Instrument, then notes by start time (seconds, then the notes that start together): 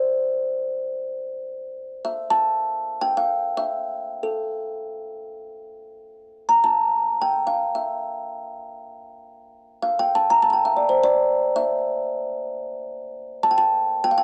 kalimba
Already playing: C5
2.05 E5
2.30 A5
3.01 G5
3.17 F5
3.57 E5
4.23 A4
6.49 A#5
6.64 A5
7.22 G5
7.47 F5
7.75 E5
9.82 F5
9.99 G5
10.15 A5
10.30 A#5
10.42 A5
10.50 G5 A5
10.65 E5
10.77 D5
10.89 C5
11.04 D5
11.56 E5
13.43 A5
13.51 G5
13.58 A5
14.04 G5
14.11 F5
14.18 G5